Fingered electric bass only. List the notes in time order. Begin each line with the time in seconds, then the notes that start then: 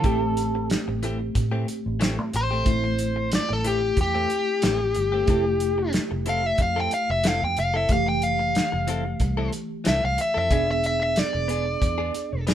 0.04 A1
0.88 A1
1.36 A2
1.86 A1
2.19 A2
2.34 A1
2.67 A1
3.50 A1
3.97 E2
4.64 A1
4.97 G1
5.28 F1
6.11 F1
6.59 F2
7.10 F1
7.42 F2
7.58 F1
7.90 F1
8.73 F1
9.20 C2
9.87 C2
10.04 C2
10.37 F2
10.51 E1
11.34 E1
11.82 E2
12.33 E1